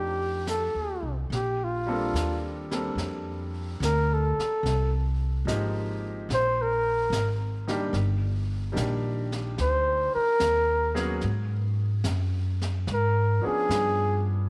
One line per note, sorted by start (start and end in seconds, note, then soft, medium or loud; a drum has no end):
0.00 0.71 F2 medium
0.00 1.31 F3 soft
0.00 1.31 A3 soft
0.00 1.31 D4 soft
0.00 1.32 D#4 soft
0.00 0.48 G4 medium
0.00 1.31 G4 soft
0.47 1.15 A4 medium
0.47 snare soft
0.47 hi-hat pedal medium
0.74 1.01 D#2 soft
1.03 1.29 C2 medium
1.30 2.12 A#1 medium
1.30 1.65 G4 medium
1.30 brush sweep soft
1.30 snare soft
1.64 2.45 F4 medium
1.86 2.65 G3 medium
1.86 2.66 A#3 medium
1.86 2.66 C4 medium
1.86 2.66 D4 medium
1.86 2.66 A4 medium
2.13 2.95 D#2 medium
2.13 snare medium
2.13 hi-hat pedal soft
2.71 2.95 G3 medium
2.71 2.95 A#3 medium
2.71 2.95 C4 soft
2.71 2.96 D4 soft
2.71 2.96 A4 medium
2.71 snare soft
2.95 3.77 F2 medium
2.95 brush sweep soft
2.95 snare soft
3.80 4.33 D2 medium
3.80 snare medium
3.80 hi-hat pedal medium
3.84 4.15 A#4 medium
4.14 4.94 A4 medium
4.38 muted upright bass stroke soft
4.38 snare soft
4.63 5.44 C2 medium
4.63 brush sweep soft
4.63 snare soft
5.45 6.26 G#1 medium
5.45 5.98 F3 medium
5.45 5.98 G#3 medium
5.45 5.98 A#3 medium
5.45 5.98 D#4 medium
5.45 5.98 G4 medium
5.45 snare medium
5.45 hi-hat pedal medium
6.29 7.09 A#1 medium
6.29 brush sweep soft
6.29 snare soft
6.34 6.63 C5 medium
6.62 7.42 A#4 medium
7.10 7.90 G#1 medium
7.10 snare medium
7.10 hi-hat pedal medium
7.68 7.91 D#3 medium
7.68 7.91 G3 medium
7.68 7.91 A#3 medium
7.68 7.92 D4 medium
7.68 7.92 G4 medium
7.68 snare soft
7.93 8.73 G1 medium
7.93 brush sweep soft
7.93 snare soft
8.72 9.25 D#3 medium
8.72 9.24 G3 soft
8.72 9.25 A#3 medium
8.72 9.25 D4 medium
8.72 9.25 G4 medium
8.76 9.55 A#1 medium
8.76 snare medium
8.76 hi-hat pedal medium
9.32 snare soft
9.58 10.10 D2 medium
9.58 10.12 C5 medium
9.58 brush sweep medium
9.58 snare soft
10.15 10.92 A#4 loud
10.15 muted upright bass stroke soft
10.40 11.20 D#2 medium
10.40 snare medium
10.40 hi-hat pedal medium
10.95 11.18 F#3 medium
10.95 11.19 A#3 medium
10.95 11.19 B3 medium
10.95 11.19 C#4 medium
10.95 11.19 G#4 medium
10.95 snare soft
11.21 12.03 G#2 medium
11.21 brush sweep soft
11.21 snare soft
12.04 12.85 F#2 medium
12.04 snare medium
12.04 hi-hat pedal medium
12.62 snare soft
12.87 13.40 G#2 medium
12.87 brush sweep soft
12.87 snare soft
12.93 13.43 A#4 medium
13.42 14.47 F3 medium
13.42 14.48 B3 medium
13.42 14.48 C#4 medium
13.42 14.48 D4 medium
13.42 14.49 G#4 medium
13.46 14.25 G#4 medium
13.46 muted upright bass stroke soft
13.69 14.49 G2 medium
13.69 snare medium
13.69 hi-hat pedal medium